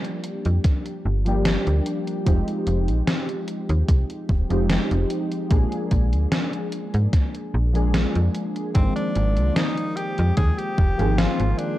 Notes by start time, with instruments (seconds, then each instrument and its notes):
Already playing: synth keys F3 G3 A#3 D4 G4
0.04 closed hi-hat
0.24 closed hi-hat
0.45 fm bass F2, closed hi-hat
0.64 kick, snare, closed hi-hat
0.86 closed hi-hat
1.05 fm bass G1
1.25 synth keys F3 G3 A#3 D4 G4, closed hi-hat
1.45 snare, closed hi-hat
1.67 fm bass D2, closed hi-hat
1.86 closed hi-hat
2.07 closed hi-hat
2.25 fm bass F1, synth keys F3 G#3 C4 D#4 G4, kick, closed hi-hat
2.48 closed hi-hat
2.67 fm bass F1, closed hi-hat
2.88 fm bass A#1, closed hi-hat
3.07 snare, closed hi-hat
3.29 closed hi-hat
3.48 closed hi-hat
3.69 fm bass D#2, closed hi-hat
3.88 fm bass C2, kick, closed hi-hat
4.10 closed hi-hat
4.29 fm bass D#1, kick
4.49 fm bass F1, synth keys F3 G#3 C4 D#4 G4, closed hi-hat
4.70 snare, closed hi-hat
4.91 fm bass F1, closed hi-hat
5.10 closed hi-hat
5.32 closed hi-hat
5.49 fm bass A#1, synth keys F3 G#3 A#3 D4 G#4, kick, closed hi-hat
5.72 closed hi-hat
5.91 fm bass A#1, kick, closed hi-hat
6.13 fm bass D2, closed hi-hat
6.32 snare, closed hi-hat
6.53 closed hi-hat
6.72 closed hi-hat
6.94 fm bass G#2, closed hi-hat
7.13 kick, snare, closed hi-hat
7.35 closed hi-hat
7.54 fm bass A#1
7.73 synth keys F3 G#3 A#3 D4 G#4, closed hi-hat
7.94 snare, closed hi-hat
8.15 fm bass F2, closed hi-hat
8.35 closed hi-hat
8.56 closed hi-hat
8.74 fm bass G#1, synth keys D#3 F3 G#3 A#3 C4, tenor saxophone C4, kick, closed hi-hat
8.96 tenor saxophone D4, closed hi-hat
9.15 fm bass G#1, closed hi-hat
9.37 fm bass C2, closed hi-hat
9.55 tenor saxophone D#4, snare, closed hi-hat
9.78 closed hi-hat
9.96 tenor saxophone G4, closed hi-hat
10.18 fm bass F2, closed hi-hat
10.37 fm bass D#2, tenor saxophone G#4, kick, closed hi-hat
10.58 tenor saxophone G4, closed hi-hat
10.78 fm bass F1, kick
10.97 fm bass G#1, synth keys D#3 F3 A#3 C4 G#4, closed hi-hat
11.18 tenor saxophone F4, snare, closed hi-hat
11.40 fm bass G#1, closed hi-hat
11.58 tenor saxophone D4, closed hi-hat